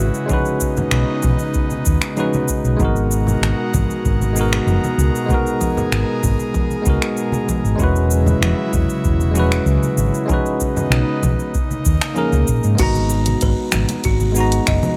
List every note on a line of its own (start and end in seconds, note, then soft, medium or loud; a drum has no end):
0.00 2.76 C#3 medium
0.00 0.25 G#3 medium
0.00 2.76 G#3 medium
0.00 0.26 C#4 medium
0.00 0.27 E4 medium
0.00 0.27 F#4 medium
0.00 0.28 F#4 medium
0.00 0.29 B4 medium
0.14 shaker soft
0.26 1.81 G#3 medium
0.26 1.82 C#4 medium
0.26 1.82 D#4 medium
0.26 high conga medium
0.26 low conga medium
0.26 shaker soft
0.30 2.78 B3 medium
0.30 2.77 D#4 medium
0.30 1.83 F#4 medium
0.30 1.84 B4 medium
0.30 kick loud
0.46 shaker soft
0.60 kick medium
0.60 shaker medium
0.77 high conga medium
0.77 low conga medium
0.77 shaker soft
0.91 1.02 B1 medium
0.91 finger snap medium
0.91 shaker soft
1.23 1.34 B1 medium
1.23 kick loud
1.23 high conga medium
1.23 low conga medium
1.23 shaker medium
1.39 shaker soft
1.54 kick loud
1.54 shaker soft
1.70 high conga medium
1.70 shaker soft
1.85 1.97 D#2 medium
1.85 kick loud
1.85 shaker medium
2.02 finger snap medium
2.02 shaker soft
2.16 2.75 G#3 medium
2.16 2.76 C#4 medium
2.16 2.77 D#4 medium
2.16 2.77 F#4 medium
2.16 2.78 B4 medium
2.16 low conga medium
2.16 shaker soft
2.33 high conga medium
2.33 shaker soft
2.48 kick medium
2.48 shaker medium
2.65 2.74 B1 medium
2.65 shaker soft
2.76 3.33 G#1 loud
2.76 7.76 B2 medium
2.76 4.31 G#3 medium
2.76 12.76 G#3 medium
2.76 4.32 B3 medium
2.76 4.33 D#4 medium
2.76 7.76 A#4 medium
2.76 high conga medium
2.76 low conga medium
2.76 shaker soft
2.80 5.28 F#4 medium
2.80 4.34 F#4 medium
2.80 kick loud
2.85 4.35 A#4 medium
2.96 shaker soft
3.11 shaker medium
3.27 high conga medium
3.27 low conga medium
3.27 shaker soft
3.41 3.52 G#1 medium
3.41 finger snap medium
3.41 shaker soft
3.74 3.84 G#1 medium
3.74 kick medium
3.74 high conga medium
3.74 low conga medium
3.74 shaker medium
3.90 shaker soft
4.05 4.58 G#1 medium
4.05 kick loud
4.05 shaker soft
4.22 high conga medium
4.22 shaker soft
4.33 5.25 G#3 medium
4.33 5.26 B3 medium
4.33 5.27 D#4 medium
4.33 shaker medium
4.39 5.28 F#4 medium
4.39 5.29 A#4 medium
4.53 finger snap medium
4.53 shaker soft
4.67 4.77 F#1 medium
4.67 low conga medium
4.67 shaker soft
4.84 high conga medium
4.84 shaker soft
4.98 5.08 C#2 medium
4.98 shaker medium
5.15 shaker soft
5.26 6.81 G#3 medium
5.26 6.82 B3 medium
5.26 7.77 G#4 medium
5.26 high conga medium
5.26 shaker soft
5.31 6.83 D#4 medium
5.31 6.84 F#4 medium
5.31 6.85 A#4 medium
5.31 kick loud
5.47 shaker soft
5.61 kick medium
5.61 low conga medium
5.61 shaker medium
5.77 high conga medium
5.77 low conga medium
5.77 shaker soft
5.92 6.02 G#1 medium
5.92 finger snap medium
5.92 shaker soft
6.23 6.34 G#1 medium
6.23 kick loud
6.23 high conga medium
6.23 shaker medium
6.40 shaker soft
6.54 kick loud
6.54 low conga medium
6.54 shaker soft
6.70 high conga medium
6.70 shaker soft
6.82 7.74 G#3 medium
6.82 7.75 B3 medium
6.82 shaker medium
6.86 6.96 C#2 medium
6.86 7.76 D#4 medium
6.86 7.77 F#4 medium
6.86 7.78 A#4 medium
6.86 kick loud
7.02 finger snap medium
7.02 shaker soft
7.17 shaker soft
7.32 high conga medium
7.32 shaker soft
7.49 kick medium
7.49 low conga medium
7.49 shaker medium
7.64 7.74 G#1 medium
7.64 shaker soft
7.76 9.30 G#3 medium
7.76 9.32 C#4 medium
7.76 high conga medium
7.76 shaker soft
7.80 8.33 E1 loud
7.80 12.76 C#3 medium
7.80 10.28 F#3 medium
7.80 9.32 E4 medium
7.80 10.28 E4 medium
7.80 9.34 F#4 medium
7.80 kick loud
7.84 9.34 B4 medium
7.96 shaker soft
8.11 shaker medium
8.26 high conga medium
8.26 low conga medium
8.26 shaker soft
8.41 8.52 E1 medium
8.41 finger snap medium
8.41 low conga medium
8.41 shaker soft
8.73 8.84 E1 loud
8.73 kick loud
8.73 high conga medium
8.73 shaker medium
8.90 shaker soft
9.04 9.58 E1 medium
9.04 kick loud
9.04 shaker soft
9.20 high conga medium
9.20 shaker soft
9.31 10.24 G#3 medium
9.31 10.25 C#4 medium
9.36 10.26 E4 medium
9.36 10.27 F#4 medium
9.36 low conga medium
9.36 shaker medium
9.40 10.28 B4 medium
9.52 finger snap medium
9.52 shaker soft
9.66 9.77 C#2 medium
9.66 shaker soft
9.83 high conga medium
9.83 shaker soft
9.97 10.08 G#1 medium
9.97 shaker medium
10.14 shaker soft
10.26 11.51 G#3 medium
10.26 11.53 B3 medium
10.26 11.52 C#4 medium
10.26 11.53 D#4 medium
10.26 high conga medium
10.26 low conga medium
10.26 shaker soft
10.30 11.54 F#4 medium
10.30 11.55 B4 medium
10.30 kick loud
10.46 shaker soft
10.60 kick medium
10.60 shaker medium
10.76 high conga medium
10.76 low conga medium
10.76 shaker soft
10.90 11.01 B1 medium
10.90 finger snap medium
10.90 shaker soft
11.23 11.34 B1 medium
11.23 kick loud
11.23 high conga medium
11.23 low conga medium
11.23 shaker medium
11.39 shaker soft
11.54 12.79 A#3 medium
11.54 12.79 D#4 medium
11.54 kick loud
11.54 shaker soft
11.71 high conga medium
11.71 shaker soft
11.85 11.96 D#2 medium
11.85 kick loud
11.85 shaker medium
12.01 finger snap medium
12.01 shaker soft
12.14 12.75 A#3 medium
12.14 12.75 C#4 medium
12.14 12.76 D#4 medium
12.14 12.76 G#4 medium
12.14 12.77 A#4 medium
12.14 low conga medium
12.14 shaker soft
12.33 12.42 C#2 medium
12.33 high conga medium
12.33 shaker soft
12.48 12.59 A#1 medium
12.48 kick medium
12.48 shaker medium
12.64 12.74 G#2 medium
12.64 shaker soft
12.75 14.30 G#3 medium
12.75 14.31 B3 medium
12.75 closed hi-hat soft
12.75 crash medium
12.75 shaker soft
12.79 13.33 G#1 loud
12.79 14.32 D#4 medium
12.79 13.10 F#4 loud
12.79 14.33 F#4 medium
12.79 14.34 A#5 medium
12.79 kick loud
12.79 high conga medium
12.95 muted conga medium
12.95 shaker soft
13.10 muted conga soft
13.10 shaker medium
13.26 closed hi-hat medium
13.26 high conga medium
13.26 shaker soft
13.41 13.53 G#1 medium
13.41 13.60 B4 medium
13.41 kick medium
13.41 closed hi-hat soft
13.41 shaker soft
13.72 13.84 G#1 loud
13.72 finger snap medium
13.72 high conga medium
13.72 low conga medium
13.72 shaker medium
13.89 closed hi-hat medium
13.89 muted conga medium
13.89 shaker soft
14.04 14.58 G#1 medium
14.04 14.23 F#4 medium
14.04 kick medium
14.04 closed hi-hat soft
14.04 shaker soft
14.20 high conga medium
14.20 shaker soft
14.32 14.97 G#3 medium
14.32 14.97 B3 medium
14.32 shaker medium
14.37 14.97 D#4 medium
14.37 14.97 F#4 medium
14.37 14.97 A#5 medium
14.52 closed hi-hat medium
14.52 shaker soft
14.67 14.78 F#1 loud
14.67 14.85 D#5 medium
14.67 finger snap medium
14.67 kick loud
14.67 closed hi-hat soft
14.67 shaker soft
14.83 muted conga medium
14.83 high conga medium
14.83 low conga medium
14.83 shaker soft